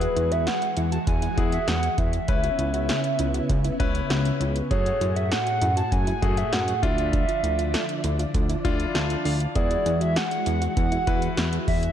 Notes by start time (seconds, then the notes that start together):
Already playing: E3 G#3 E4 F#4 G#4 B4
0.01 F#4, closed hi-hat
0.16 E2 E4, closed hi-hat
0.31 F#4 E5, closed hi-hat
0.47 G#4 F#5, snare, closed hi-hat
0.62 closed hi-hat
0.77 E2 E4, closed hi-hat
0.92 F#4 A5, closed hi-hat
1.07 E2 G#5, kick, closed hi-hat
1.22 E4, closed hi-hat
1.37 E2 E4 F#4 G#4, kick, closed hi-hat
1.52 E5, closed hi-hat
1.68 E2 F#4 F#5, snare, closed hi-hat
1.83 closed hi-hat
1.98 E2 E4 E5, kick, closed hi-hat
2.13 closed hi-hat
2.28 C#2 C#3 B3 C#4 E4 B4, kick, closed hi-hat
2.44 F#4, closed hi-hat
2.59 C#2 E4, closed hi-hat
2.74 F#4, closed hi-hat
2.89 G#4, snare, closed hi-hat
3.04 closed hi-hat
3.19 C#2 E4, closed hi-hat
3.34 F#4, closed hi-hat
3.49 C#2, kick, closed hi-hat
3.64 E4, closed hi-hat
3.80 C#2 C#4 E4 F#4 B4, kick, closed hi-hat
3.95 closed hi-hat
4.10 C#2 F#4, snare, closed hi-hat
4.25 closed hi-hat
4.40 C#2 E4, closed hi-hat
4.56 closed hi-hat
4.71 F#2 A2 A3 C#4 F#4 G#4 C#5, kick, closed hi-hat
4.86 F#4, closed hi-hat
5.01 F#2 E4, closed hi-hat
5.16 F#4 E5, closed hi-hat
5.31 G#4 F#5, snare, closed hi-hat
5.47 closed hi-hat
5.62 F#2 E4, closed hi-hat
5.77 F#4 A5, closed hi-hat
5.92 F#2 G#5, kick, closed hi-hat
6.07 E4, closed hi-hat
6.22 F#2 A3 F#4 G#4, kick, closed hi-hat
6.37 E5, closed hi-hat
6.52 F#2 F#4 F#5, snare, closed hi-hat
6.68 closed hi-hat
6.83 D2 D3 F3 D4 E4 F4 E5, kick, closed hi-hat
6.98 closed hi-hat
7.13 D4, kick, closed hi-hat
7.28 F4, closed hi-hat
7.43 D2 E4, closed hi-hat
7.59 F4, closed hi-hat
7.74 A4, snare, closed hi-hat
7.89 closed hi-hat
8.04 D2 E4, closed hi-hat
8.19 F4, closed hi-hat
8.34 D2, kick, closed hi-hat
8.49 E4, closed hi-hat
8.65 D2 D4 E4 F4, kick, closed hi-hat
8.80 closed hi-hat
8.95 D2 F4 A5, snare, closed hi-hat
9.10 closed hi-hat
9.25 D2 D4 F5, open hi-hat
9.40 closed hi-hat
9.55 E2 E3 G#3 B3 E4 F#4 G#4 D5, kick, closed hi-hat
9.71 F#4, closed hi-hat
9.86 E2 E4, closed hi-hat
10.01 F#4 E5, closed hi-hat
10.16 G#4 F#5, snare, closed hi-hat
10.31 closed hi-hat
10.46 E2 E4, closed hi-hat
10.62 F#4, closed hi-hat
10.77 E2 F#5, kick, closed hi-hat
10.92 E4, closed hi-hat
11.07 E2 E4 F#4 B4, kick, closed hi-hat
11.22 closed hi-hat
11.37 E2 F#4, snare, closed hi-hat
11.53 closed hi-hat
11.68 E2 E4 E5, kick, open hi-hat
11.83 closed hi-hat